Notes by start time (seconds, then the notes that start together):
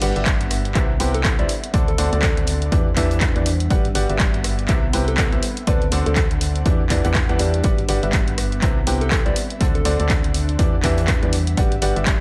Already playing: G3 B3 D4 E5 F#5
0.01 G1 G3 F#4 G4 B4 D5 F#5, closed hi-hat, open hi-hat
0.16 G1 G3 F#4 G4 B4 D5 E5, closed hi-hat
0.26 kick, snare, clap, closed hi-hat
0.41 closed hi-hat
0.51 cross-stick, closed hi-hat, open hi-hat
0.65 closed hi-hat
0.75 C2 C3 C4 E4 G4 B4 C5 E5, kick, clap, closed hi-hat
1.00 C2 C3 E4 G4 B4 C5 G5, closed hi-hat, open hi-hat
1.10 E5
1.14 A4, closed hi-hat
1.24 A4, kick, cross-stick, snare, clap, closed hi-hat
1.39 C2 E4 G4 B4 C5 D5 E5, closed hi-hat
1.49 D4, closed hi-hat, open hi-hat
1.57 C5
1.64 closed hi-hat
1.74 D2 D3 D4 F#4 A4 C5 D5, kick, closed hi-hat
1.88 A4, closed hi-hat
1.98 D2 D3 D4 F#4 A4 C5 D5, closed hi-hat, open hi-hat
2.03 F#5
2.13 D2 D3 D4 F#4 A4 C5 D5, closed hi-hat
2.22 kick, snare, clap, closed hi-hat
2.37 closed hi-hat
2.47 closed hi-hat, open hi-hat
2.62 closed hi-hat
2.72 E2 E3 D4 E4 G4 B4 D5, kick, closed hi-hat
2.96 E2 E3 G3 D4 E4 G4 B4 E5, kick, clap, closed hi-hat, open hi-hat
3.11 closed hi-hat
3.21 kick, cross-stick, snare, clap, closed hi-hat
3.36 E2 E3 D4 E4 G4 B4 D5, closed hi-hat
3.46 closed hi-hat, open hi-hat
3.60 closed hi-hat
3.70 G1 G3 B3 F#4 G4 B4 D5 F#5, kick, closed hi-hat
3.85 closed hi-hat
3.95 G1 G3 F#4 G4 B4 D5 F#5, closed hi-hat, open hi-hat
4.09 G1 G3 F#4 G4 B4 D5 E5, closed hi-hat
4.16 F#5, clap
4.20 kick, snare, closed hi-hat
4.34 closed hi-hat
4.44 cross-stick, closed hi-hat, open hi-hat
4.59 closed hi-hat
4.68 C2 C3 C4 E4 G4 B4 C5 E5, kick, clap, closed hi-hat
4.93 C2 C3 E4 G4 B4 C5 E5 G5, closed hi-hat, open hi-hat
5.08 A4, closed hi-hat
5.18 A4, kick, cross-stick, snare, clap, closed hi-hat
5.32 C2 E4 G4 B4 C5 E5, closed hi-hat
5.43 D4, closed hi-hat, open hi-hat
5.57 F#5, closed hi-hat
5.67 D2 D3 D4 F#4 A4 B4 C5 D5, kick, closed hi-hat
5.74 C5
5.82 closed hi-hat
5.92 D2 D3 D4 F#4 A4 C5 D5, closed hi-hat, open hi-hat
6.06 D2 D3 D4 F#4 A4 C5 D5, closed hi-hat
6.16 A4, kick, snare, clap, closed hi-hat
6.31 closed hi-hat
6.41 closed hi-hat, open hi-hat
6.56 closed hi-hat
6.66 E2 E3 D4 E4 G4 B4 D5, kick, closed hi-hat
6.90 E2 E3 D4 E4 G4 B4 D5, kick, clap, closed hi-hat, open hi-hat
6.95 G3
7.04 E2 E3 D4 E4 G4 B4 F#5, closed hi-hat
7.11 E5, kick, cross-stick, clap, closed hi-hat
7.15 snare
7.29 E2 E3 D4 E4 G4 B4 F#5, closed hi-hat
7.39 E2 G3 D4 E4 G4 B4 D5, closed hi-hat, open hi-hat
7.54 closed hi-hat
7.64 G1 G3 B3 F#4 G4 B4 D5 F#5, kick, closed hi-hat
7.78 closed hi-hat
7.89 G1 G3 F#4 G4 B4 D5 F#5, closed hi-hat, open hi-hat
7.99 G1 G3 F#4 G4 B4 D5 E5 F#5, closed hi-hat
8.13 kick, snare, clap, closed hi-hat
8.28 closed hi-hat
8.38 cross-stick, closed hi-hat, open hi-hat
8.52 closed hi-hat
8.62 C2 C3 C4 E4 G4 B4 C5 E5, kick, clap, closed hi-hat
8.87 C2 C3 E4 G4 B4 C5 G5, closed hi-hat, open hi-hat
8.96 E5
9.01 A4, closed hi-hat
9.11 A4, kick, cross-stick, snare, clap, closed hi-hat
9.26 C2 E4 G4 B4 C5 D5 E5, closed hi-hat
9.36 D4, closed hi-hat, open hi-hat
9.48 C5, closed hi-hat
9.61 D2 D3 D4 F#4 A4 C5 D5, kick, closed hi-hat
9.75 A4, closed hi-hat
9.84 D2 D3 D4 F#4 A4 C5 D5 F#5, closed hi-hat, open hi-hat
10.00 D2 D3 D4 F#4 A4 C5 D5, closed hi-hat
10.09 kick, snare, clap, closed hi-hat
10.24 closed hi-hat
10.34 closed hi-hat, open hi-hat
10.49 closed hi-hat
10.59 E2 E3 D4 E4 G4 B4 D5, kick, closed hi-hat
10.79 G3, clap
10.84 E2 E3 D4 E4 G4 B4 E5, kick, closed hi-hat, open hi-hat
10.98 closed hi-hat
11.08 kick, cross-stick, snare, clap, closed hi-hat
11.23 E2 E3 D4 E4 G4 B4 D5, closed hi-hat
11.33 closed hi-hat, open hi-hat
11.47 closed hi-hat
11.57 G1 G3 B3 F#4 G4 B4 D5 F#5, kick, closed hi-hat
11.72 closed hi-hat
11.82 G1 G3 F#4 G4 B4 D5 F#5, closed hi-hat, open hi-hat
11.96 G1 G3 F#4 G4 B4 D5 E5, closed hi-hat
12.03 F#5, clap
12.07 kick, snare, closed hi-hat